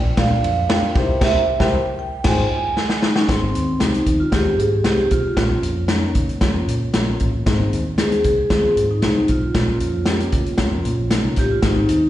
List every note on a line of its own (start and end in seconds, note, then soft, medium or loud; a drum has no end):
0.00 0.13 A#1 loud
0.00 0.20 G5 loud
0.17 0.39 A#2 loud
0.17 0.48 D4 medium
0.17 0.48 F4 medium
0.17 0.48 A#4 medium
0.17 0.49 D5 medium
0.17 0.66 F5 loud
0.17 kick loud
0.17 snare loud
0.17 ride medium
0.43 0.64 F2 medium
0.43 ride medium
0.69 0.95 D4 medium
0.69 0.96 F4 medium
0.69 0.94 A#4 medium
0.69 0.96 F5 medium
0.69 1.18 G5 loud
0.69 snare loud
0.69 ride medium
0.82 muted picked electric bass stroke soft
0.94 1.21 C2 loud
0.94 1.01 D#4 medium
0.94 1.19 G4 medium
0.94 1.20 A#4 medium
0.94 1.20 C5 medium
0.94 kick loud
0.94 snare soft
0.94 ride medium
1.01 1.24 E4 medium
1.21 1.39 C2 loud
1.21 1.39 G4 loud
1.21 1.39 A#4 loud
1.21 1.39 C5 loud
1.21 1.62 E5 loud
1.21 kick loud
1.21 snare loud
1.21 crash medium
1.26 1.42 E4 loud
1.59 1.78 C2 loud
1.59 1.77 E4 loud
1.59 1.77 G4 loud
1.59 1.78 A#4 loud
1.59 1.78 C5 loud
1.59 1.98 G5 loud
1.59 kick loud
1.59 snare loud
1.99 2.26 G5 medium
2.24 2.42 G#1 loud
2.24 2.42 D#4 loud
2.24 2.43 F4 loud
2.24 2.43 G#4 loud
2.24 2.43 C5 loud
2.24 2.99 G#5 medium
2.24 kick loud
2.24 snare loud
2.24 crash medium
2.77 snare medium
2.89 snare medium
3.02 3.16 D#4 medium
3.02 snare medium
3.16 3.28 C#4 medium
3.16 snare medium
3.28 3.49 G#1 medium
3.28 3.59 C4 medium
3.28 3.77 C4 medium
3.28 3.59 D#4 medium
3.28 3.59 G#4 medium
3.28 kick medium
3.28 snare loud
3.28 closed hi-hat medium
3.54 3.75 D#2 medium
3.54 closed hi-hat medium
3.79 4.01 C2 medium
3.79 4.10 C4 medium
3.79 4.11 D#4 medium
3.79 4.21 D#4 medium
3.79 4.11 G4 medium
3.79 snare medium
3.79 closed hi-hat medium
3.94 closed hi-hat soft
4.06 4.28 D#2 medium
4.06 kick medium
4.06 closed hi-hat medium
4.20 4.33 F4 medium
4.31 4.58 D#2 medium
4.31 4.62 C4 medium
4.31 4.63 D#4 medium
4.31 4.60 G4 medium
4.31 4.63 G#4 medium
4.31 kick medium
4.31 snare medium
4.31 closed hi-hat medium
4.58 4.79 G#2 medium
4.58 4.83 G#4 medium
4.58 closed hi-hat medium
4.84 5.05 C2 medium
4.84 5.15 C4 medium
4.84 5.15 D#4 medium
4.84 5.12 G4 medium
4.84 5.15 G#4 medium
4.84 snare loud
4.84 closed hi-hat medium
5.11 5.32 B1 medium
5.11 5.60 F4 medium
5.11 kick medium
5.11 closed hi-hat medium
5.36 5.58 A#1 medium
5.36 5.67 A#3 medium
5.36 5.67 C#4 medium
5.36 5.68 F4 medium
5.36 kick medium
5.36 snare loud
5.36 closed hi-hat medium
5.63 6.05 F2 medium
5.63 closed hi-hat medium
5.88 6.19 A#3 medium
5.88 6.20 C#4 medium
5.88 6.20 D#4 medium
5.88 snare medium
5.88 closed hi-hat medium
6.15 6.36 C#2 medium
6.15 kick medium
6.15 closed hi-hat medium
6.29 closed hi-hat soft
6.41 6.62 F2 medium
6.41 6.72 A#3 medium
6.41 6.72 C#4 medium
6.41 6.72 F4 medium
6.41 kick medium
6.41 snare loud
6.41 closed hi-hat medium
6.68 6.89 A#2 medium
6.68 closed hi-hat medium
6.94 7.15 A#1 medium
6.94 7.24 A#3 medium
6.94 7.24 C#4 medium
6.94 7.25 F4 medium
6.94 snare loud
6.94 closed hi-hat medium
7.20 7.41 A1 medium
7.20 kick medium
7.20 closed hi-hat medium
7.46 7.67 G#1 medium
7.46 7.76 G#3 medium
7.46 7.76 C4 medium
7.46 7.77 D#4 medium
7.46 kick loud
7.46 snare loud
7.46 closed hi-hat medium
7.73 8.15 D#2 medium
7.73 closed hi-hat medium
7.98 8.28 G#3 medium
7.98 8.29 C4 medium
7.98 8.29 D#4 medium
7.98 8.23 G#4 medium
7.98 snare medium
7.98 closed hi-hat medium
8.12 closed hi-hat soft
8.24 8.45 C2 medium
8.24 8.86 G#4 medium
8.24 kick medium
8.24 closed hi-hat medium
8.50 8.71 D#2 medium
8.50 8.81 G#3 medium
8.50 8.81 C4 medium
8.50 8.81 F4 medium
8.50 kick medium
8.50 snare loud
8.50 closed hi-hat medium
8.77 9.04 G#2 medium
8.77 closed hi-hat medium
8.91 9.30 D#4 medium
9.02 9.24 C2 medium
9.02 9.33 G#3 medium
9.02 9.33 C4 medium
9.02 9.34 D#4 medium
9.02 snare medium
9.02 closed hi-hat medium
9.28 9.50 B1 medium
9.28 11.44 F4 medium
9.28 kick medium
9.28 closed hi-hat medium
9.54 9.76 A#1 medium
9.54 9.85 A#3 medium
9.54 9.85 C#4 medium
9.54 9.86 F4 medium
9.54 kick medium
9.54 snare loud
9.54 closed hi-hat medium
9.80 10.23 F2 medium
9.80 closed hi-hat medium
10.06 10.37 A#3 medium
10.06 10.37 C#4 medium
10.06 10.38 G4 medium
10.06 snare medium
10.06 closed hi-hat medium
10.20 closed hi-hat soft
10.32 10.54 C#2 medium
10.32 kick medium
10.32 closed hi-hat medium
10.46 closed hi-hat soft
10.58 10.89 A#3 medium
10.58 10.89 C#4 medium
10.58 10.90 F4 medium
10.58 kick medium
10.58 snare loud
10.58 closed hi-hat medium
10.72 10.82 F2 medium
10.85 10.95 A#2 medium
10.85 closed hi-hat medium
10.98 11.19 A#1 medium
11.11 11.41 A#3 medium
11.11 11.42 C#4 medium
11.11 11.42 D#4 medium
11.11 snare loud
11.11 closed hi-hat medium
11.24 11.34 C2 medium
11.36 11.58 A1 medium
11.36 11.44 G4 medium
11.36 kick medium
11.36 snare soft
11.36 closed hi-hat medium
11.52 11.64 F4 medium
11.62 11.84 G#1 loud
11.62 11.93 G#3 medium
11.62 11.94 C4 medium
11.62 12.10 D#4 medium
11.62 11.94 D#4 medium
11.62 kick medium
11.62 snare loud
11.62 closed hi-hat medium
11.89 12.10 D#2 medium
11.89 closed hi-hat medium